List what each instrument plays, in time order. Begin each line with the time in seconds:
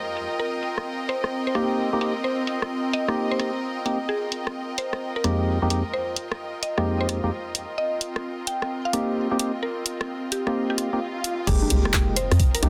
Already playing: string section F4 A#4 D#5 G5
0.17 closed hi-hat
0.40 string section C4, synth pluck A#4
0.63 closed hi-hat
0.78 cross-stick
1.09 synth pluck C5, closed hi-hat
1.24 cross-stick
1.47 synth pluck C5
1.55 synth stab A#3 C4 D#4 G4, cross-stick, closed hi-hat
1.93 synth stab A#3 C4 D#4 G4
2.01 synth stab A#3 C4 D#4, closed hi-hat
2.24 synth pluck C5
2.47 closed hi-hat
2.62 cross-stick
2.93 synth pluck D#5, closed hi-hat
3.08 synth stab A#3 C4 D#4 G4, cross-stick
3.31 synth pluck C5
3.40 cross-stick, closed hi-hat
3.86 synth stab A#3 C4 D#4 G4, closed hi-hat
4.09 string section F4, synth pluck G#4
4.32 closed hi-hat
4.47 cross-stick
4.78 synth pluck C5, closed hi-hat
4.93 cross-stick
5.16 synth pluck A#4
5.24 synth stab F2 G#3 A#3 C4 D#4 G4, cross-stick, closed hi-hat
5.62 synth stab F2 G#3 A#3 C4 D#4 G4
5.70 synth stab F2 G#3 A#3 C4 D#4 G4, closed hi-hat
5.94 synth pluck C5
6.16 closed hi-hat
6.32 cross-stick
6.63 synth pluck D#5, closed hi-hat
6.78 synth stab F2 G#3 A#3 C4 D#4 G4, cross-stick
7.01 synth pluck C5
7.09 cross-stick, closed hi-hat
7.24 synth stab F2 G#3 A#3 C4 D#4 G4
7.55 closed hi-hat
7.78 string section C4, synth pluck D#5
8.01 closed hi-hat
8.16 cross-stick
8.47 synth pluck G5, closed hi-hat
8.62 cross-stick
8.85 synth pluck F5
8.93 synth stab A#3 C4 D#4 G4, cross-stick, closed hi-hat
9.31 synth stab A#3 C4 D#4 G4
9.39 synth stab C4 D#4, closed hi-hat
9.63 synth pluck A#4
9.86 closed hi-hat
10.01 cross-stick
10.32 synth pluck G4, closed hi-hat
10.47 synth stab A#3 C4 D#4 G4, cross-stick
10.55 swell
10.70 synth pluck G4
10.78 cross-stick, closed hi-hat
10.93 synth stab A#3 C4 D#4 G4
11.24 closed hi-hat
11.47 fm bass F1, synth stab G#3 A#3 D#4 G4, synth pluck G#4, kick, closed hi-hat, crash, impact
11.61 string section A#4, high conga
11.70 fm bass C2, closed hi-hat
11.78 string section D#5
11.85 cross-stick
11.93 kick, clap, closed hi-hat
11.98 string section G5
12.16 synth pluck C5, closed hi-hat
12.31 fm bass F2, cross-stick, closed hi-hat
12.40 kick, closed hi-hat
12.55 synth pluck A#4, closed hi-hat
12.63 fm bass C2, synth stab G#3 A#3 D#4 G4, cross-stick, closed hi-hat, high conga